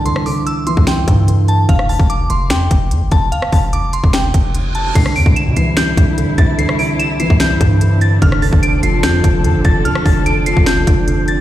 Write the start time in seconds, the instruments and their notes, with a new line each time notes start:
Already playing: 808-style bass C2, grand piano D3 E3
0.05 grand piano D3, synth bell C6, closed hi-hat
0.16 cross-stick
0.26 grand piano D3, synth bell D6, open hi-hat
0.47 synth bell E6, closed hi-hat
0.67 grand piano E3, synth bell C6, closed hi-hat
0.77 808-style bass C2, kick
0.87 synth bell G5, finger snap, snare, closed hi-hat
1.07 808-style bass G2, grand piano D3, kick, closed hi-hat
1.28 grand piano D3, closed hi-hat
1.48 synth bell A5, closed hi-hat
1.69 808-style bass F1, synth bell F5, kick, closed hi-hat
1.79 cross-stick
1.89 synth bell A5, open hi-hat
1.99 808-style bass F1, kick
2.10 synth bell D6, closed hi-hat
2.30 808-style bass F1, synth bell C6, closed hi-hat
2.50 808-style bass F2, synth bell G5, finger snap, snare, closed hi-hat
2.71 808-style bass F1, kick, closed hi-hat
2.91 808-style bass F2, closed hi-hat
3.02 808-style bass F1
3.11 808-style bass F1, synth bell A5, kick, closed hi-hat
3.32 synth bell F5, closed hi-hat
3.42 cross-stick
3.52 808-style bass F1, synth bell A5, kick, open hi-hat
3.73 synth bell D6, closed hi-hat
3.93 synth bell C6, closed hi-hat
4.04 808-style bass F1, kick
4.13 synth bell G5, finger snap, snare, closed hi-hat, reverse cymbal
4.34 808-style bass F1, kick, closed hi-hat
4.55 closed hi-hat
4.75 synth bell A5, closed hi-hat
4.95 808-style bass C2, string section C3 C4 D4 E4, grand piano D3, synth bell C7, kick, closed hi-hat, crash
5.06 cross-stick
5.16 808-style bass E2, grand piano D3, synth bell D7, open hi-hat
5.26 808-style bass C2, kick
5.36 synth bell E7, closed hi-hat
5.46 808-style bass C3
5.57 808-style bass C2, grand piano E3, synth bell C7, closed hi-hat
5.77 synth bell G6, finger snap, snare, closed hi-hat
5.97 808-style bass C2, grand piano D3, kick, closed hi-hat
6.18 grand piano D3, closed hi-hat
6.38 808-style bass C2, synth bell A6, kick, closed hi-hat
6.58 grand piano D3, synth bell C7, closed hi-hat
6.69 cross-stick
6.79 grand piano D3, synth bell D7, open hi-hat
6.99 synth bell E7, closed hi-hat
7.20 grand piano E3, synth bell C7, closed hi-hat
7.30 808-style bass C2, kick
7.40 synth bell G6, finger snap, snare, closed hi-hat
7.61 808-style bass G2, grand piano D3, kick, closed hi-hat
7.81 grand piano D3, closed hi-hat
8.01 synth bell A6, closed hi-hat
8.22 808-style bass F1, grand piano D3, string section F3 A4, synth bell F6, kick, closed hi-hat
8.32 cross-stick
8.42 grand piano D3, synth bell A6, open hi-hat
8.53 808-style bass F1, kick
8.63 synth bell D7, closed hi-hat
8.83 808-style bass F1, grand piano F3, synth bell C7, closed hi-hat
9.03 808-style bass F2, synth bell G6, finger snap, snare, closed hi-hat
9.24 808-style bass F1, grand piano D3, kick, closed hi-hat
9.44 808-style bass F2, grand piano D3, closed hi-hat
9.55 808-style bass F1
9.65 808-style bass F1, synth bell A6, kick, closed hi-hat
9.85 grand piano D3, synth bell F6, closed hi-hat
9.95 cross-stick
10.05 808-style bass F1, grand piano D3, synth bell A6, kick, open hi-hat
10.26 synth bell D7, closed hi-hat
10.46 grand piano F3, synth bell C7, closed hi-hat
10.57 808-style bass F1, kick
10.66 synth bell G6, finger snap, snare, closed hi-hat
10.87 808-style bass F1, grand piano D3, kick, closed hi-hat
11.07 grand piano D3, closed hi-hat
11.28 synth bell A6, closed hi-hat